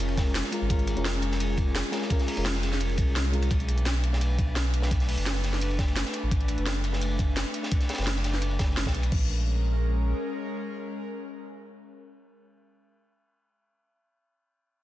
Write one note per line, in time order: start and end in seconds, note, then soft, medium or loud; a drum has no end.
0.00 0.43 F1 medium
0.00 0.51 G#3 medium
0.00 3.47 G#3 medium
0.00 0.52 C#4 medium
0.00 3.47 C#4 medium
0.00 0.53 F4 medium
0.00 0.54 A#4 loud
0.00 0.67 A#4 medium
0.00 closed hi-hat medium
0.08 ride soft
0.17 kick loud
0.17 snare medium
0.17 closed hi-hat medium
0.17 ride medium
0.26 ride soft
0.35 snare loud
0.35 closed hi-hat medium
0.35 ride medium
0.44 snare soft
0.51 0.67 G#3 medium
0.51 0.68 C#4 medium
0.51 0.68 F4 medium
0.51 0.69 A#4 medium
0.51 closed hi-hat medium
0.51 ride medium
0.61 0.95 G#1 medium
0.69 0.94 G#3 medium
0.69 0.94 C#4 medium
0.69 0.95 F4 medium
0.69 3.48 G#4 medium
0.69 0.95 A#4 loud
0.69 kick loud
0.69 closed hi-hat medium
0.69 ride medium
0.79 closed hi-hat soft
0.87 closed hi-hat medium
0.87 ride medium
0.95 1.83 F1 medium
0.95 1.11 G#3 medium
0.95 1.12 C#4 medium
0.95 1.12 F4 medium
0.95 1.13 A#4 loud
0.95 closed hi-hat soft
1.05 snare loud
1.05 closed hi-hat medium
1.05 ride medium
1.14 ride soft
1.22 closed hi-hat medium
1.22 ride medium
1.31 snare soft
1.40 closed hi-hat medium
1.40 ride medium
1.57 kick loud
1.57 closed hi-hat medium
1.57 ride medium
1.75 snare loud
1.75 closed hi-hat medium
1.75 ride medium
1.91 2.08 G#3 medium
1.91 2.08 C#4 medium
1.91 2.08 F4 medium
1.91 2.09 A#4 medium
1.91 snare medium
1.91 closed hi-hat medium
1.91 ride medium
2.02 snare soft
2.09 2.34 G#3 medium
2.09 2.34 C#4 medium
2.09 2.35 F4 medium
2.09 2.36 A#4 loud
2.09 kick loud
2.09 closed hi-hat medium
2.09 ride medium
2.19 snare soft
2.19 closed hi-hat soft
2.28 closed hi-hat medium
2.28 open hi-hat medium
2.35 3.00 F1 medium
2.35 2.51 G#3 medium
2.35 2.52 C#4 medium
2.35 2.52 F4 medium
2.35 2.53 A#4 medium
2.35 closed hi-hat soft
2.35 ride soft
2.45 snare loud
2.45 closed hi-hat medium
2.45 ride medium
2.54 snare medium
2.63 snare soft
2.63 closed hi-hat medium
2.63 ride medium
2.72 snare soft
2.80 closed hi-hat medium
2.80 ride medium
2.89 ride soft
2.98 3.49 C2 loud
2.98 kick loud
2.98 closed hi-hat medium
2.98 ride medium
3.15 snare loud
3.15 closed hi-hat medium
3.15 ride medium
3.25 ride medium
3.32 3.48 G#3 medium
3.32 3.48 C#4 medium
3.32 3.49 F4 medium
3.32 3.49 A#4 medium
3.32 closed hi-hat medium
3.42 closed hi-hat soft
3.42 ride medium
3.51 5.16 B1 loud
3.51 9.08 A3 medium
3.51 9.08 D4 medium
3.51 9.08 B4 medium
3.51 kick loud
3.51 closed hi-hat medium
3.51 ride medium
3.60 closed hi-hat soft
3.68 closed hi-hat medium
3.68 ride medium
3.78 closed hi-hat soft
3.85 snare loud
3.85 closed hi-hat medium
3.85 ride medium
3.95 ride soft
4.04 closed hi-hat medium
4.04 ride medium
4.13 snare soft
4.21 closed hi-hat medium
4.21 ride medium
4.38 kick medium
4.38 closed hi-hat medium
4.38 ride medium
4.56 snare loud
4.56 closed hi-hat medium
4.56 ride medium
4.74 closed hi-hat medium
4.74 ride medium
4.82 snare medium
4.91 kick loud
4.91 closed hi-hat medium
4.91 ride medium
5.00 snare soft
5.00 closed hi-hat soft
5.09 closed hi-hat medium
5.09 open hi-hat medium
5.17 6.04 F#1 medium
5.17 closed hi-hat soft
5.17 ride soft
5.26 snare loud
5.26 closed hi-hat medium
5.26 ride medium
5.35 snare soft
5.44 snare soft
5.44 closed hi-hat medium
5.44 ride medium
5.53 snare soft
5.61 closed hi-hat medium
5.61 ride medium
5.70 ride soft
5.79 kick medium
5.79 snare medium
5.79 closed hi-hat medium
5.79 ride medium
5.88 ride soft
5.96 snare loud
5.96 closed hi-hat medium
5.96 ride medium
6.05 snare soft
6.13 closed hi-hat medium
6.13 ride medium
6.23 6.57 A1 medium
6.31 kick loud
6.31 closed hi-hat medium
6.31 ride medium
6.40 closed hi-hat soft
6.48 closed hi-hat medium
6.48 ride medium
6.58 7.44 F#1 medium
6.58 closed hi-hat soft
6.66 snare loud
6.66 closed hi-hat medium
6.66 ride medium
6.76 ride soft
6.84 closed hi-hat medium
6.84 ride medium
6.93 snare soft
7.01 closed hi-hat medium
7.01 ride medium
7.19 kick medium
7.19 closed hi-hat medium
7.19 ride medium
7.36 snare medium
7.36 snare loud
7.36 closed hi-hat medium
7.36 ride medium
7.54 closed hi-hat medium
7.54 ride medium
7.63 snare medium
7.71 kick loud
7.71 closed hi-hat medium
7.71 ride medium
7.80 snare soft
7.80 closed hi-hat soft
7.89 snare medium
7.89 closed hi-hat medium
7.89 ride medium
7.93 snare medium
7.93 ride medium
7.98 8.58 F#1 medium
7.98 snare medium
7.98 closed hi-hat soft
7.98 ride medium
8.02 snare medium
8.02 ride medium
8.07 snare loud
8.07 closed hi-hat medium
8.07 ride medium
8.16 snare medium
8.24 snare soft
8.24 closed hi-hat medium
8.24 ride medium
8.33 snare soft
8.42 closed hi-hat medium
8.42 ride medium
8.51 ride soft
8.59 8.75 F#1 medium
8.59 kick medium
8.59 snare loud
8.59 closed hi-hat medium
8.59 ride medium
8.77 8.87 F#1 medium
8.77 snare loud
8.77 closed hi-hat medium
8.77 ride soft
8.85 9.11 B1 medium
8.85 kick medium
8.85 snare loud
8.85 ride medium
8.95 closed hi-hat medium
9.03 closed hi-hat soft
9.03 ride medium
9.12 10.13 A#1 medium
9.12 12.45 G#3 medium
9.12 12.45 C#4 medium
9.12 12.45 A#4 medium
9.12 kick loud
9.12 crash medium